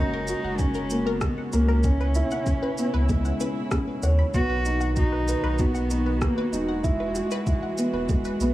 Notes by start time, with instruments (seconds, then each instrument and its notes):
Already playing: sub bass F#1, string section C#3 G#3 F#4, felt piano G#3 A#3 C#4, cello D#4
0.14 synth arpeggio sound A#4
0.28 felt piano F#4, shaker
0.44 sub bass F#1, synth arpeggio sound F#5
0.58 cello C#4, felt piano C#4, kick, shaker
0.74 synth arpeggio sound A#4, shaker
0.90 felt piano A#3, shaker
1.05 cello B3, synth arpeggio sound A#4
1.21 felt piano G#3, kick, cross-stick, shaker
1.38 synth arpeggio sound F#5
1.53 sub bass C#2, felt piano A#3, cello C#4, shaker
1.68 synth arpeggio sound A#4
1.83 string section B2 C#3 E4, felt piano C#4, kick, shaker
2.01 synth arpeggio sound B4
2.15 felt piano E4, shaker
2.31 synth arpeggio sound F#5, shaker
2.46 felt piano C#4, kick, shaker
2.63 synth arpeggio sound B4
2.78 felt piano B3, shaker
2.94 sub bass C#2, synth arpeggio sound B4
3.09 felt piano G#3, kick, shaker
3.25 synth arpeggio sound F#5, shaker
3.40 felt piano C#4, synth arpeggio sound B4, shaker
3.71 felt piano C#4, synth arpeggio sound B5, kick, cross-stick, shaker
4.03 sub bass D#2, felt piano C#5, synth arpeggio sound F#5, shaker
4.19 synth arpeggio sound B5
4.34 sub bass B1, string section D#3 F#4, felt piano B3, cello F#4, kick, shaker
4.50 synth arpeggio sound B4
4.65 felt piano D#4, shaker
4.81 synth arpeggio sound F#5, shaker
4.96 cello D#4, felt piano F#4, kick, shaker
5.12 synth arpeggio sound B4
5.28 felt piano B4, shaker
5.43 sub bass B1, synth arpeggio sound B4
5.59 cello B3, felt piano F#4, kick, shaker
5.75 synth arpeggio sound F#5, shaker
5.90 felt piano D#4, shaker
6.06 synth arpeggio sound B4
6.22 cello A#3, felt piano B3, kick, cross-stick, shaker
6.38 synth arpeggio sound B4
6.52 sub bass E1, cello G#3, felt piano D#4, shaker
6.69 synth arpeggio sound F#5
6.84 string section E3 G#3, felt piano E4, kick, shaker
7.00 synth arpeggio sound B4
7.15 felt piano F#4, shaker
7.31 synth arpeggio sound B4, shaker
7.47 felt piano E4, kick, shaker
7.63 synth arpeggio sound F#5
7.78 felt piano B3, shaker
7.93 sub bass E1, synth arpeggio sound B4
8.09 felt piano G#3, kick, shaker
8.25 synth arpeggio sound B4, shaker
8.40 sub bass B1, felt piano B3, shaker